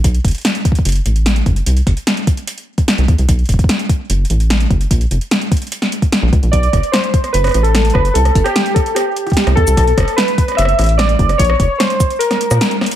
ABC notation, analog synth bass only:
X:1
M:4/4
L:1/16
Q:1/4=148
K:Bphr
V:1 name="Analog synth bass" clef=bass
B,,, z F,,, z4 z F,,, z A,,,4 F,,, z | C,, z G,,, z8 z2 C,, E,, C,, | B,,, z F,,, z4 z F,,, z A,,,4 F,,, z | _B,,, z =F,,, z8 z2 B,,, ^C,, B,,, |
B,,, z F,,, z4 z F,,, z A,,,4 F,,, z | C,, z G,,, z8 z2 C,, E,, C,, | B,,, z F,,, z4 z F,,, z A,,,4 F,,, z | ^A,,, z ^E,,, z8 ^A,, z4 |]